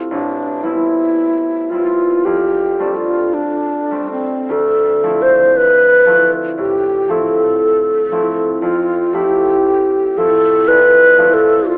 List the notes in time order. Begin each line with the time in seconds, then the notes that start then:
Already playing: A2 A3 C4 E4 F4
0.11 A1 D4
0.63 G3 B3 C4 E4
1.70 G3 B3 C4 E4 F4
2.25 F2 G4
2.79 G3 A3 C4 D4
2.96 F4
3.34 D4
3.91 G3 A3 C4 D4
4.11 C4
4.49 D2 A4
5.03 F3 A3 C4 E4
5.22 C5
5.57 B4
6.06 F3 A3 C4 E4
6.58 A2 G4
7.09 F3 A3 C4 E4 A4
8.11 F3 A3 C4 E4
8.62 F2 F4
9.13 F3 A3 C4 E4 G4
10.17 F3 A3 C4 E4 A4
10.68 C2 B4
11.18 F3 A3 C4 E4
11.34 A4
11.68 F4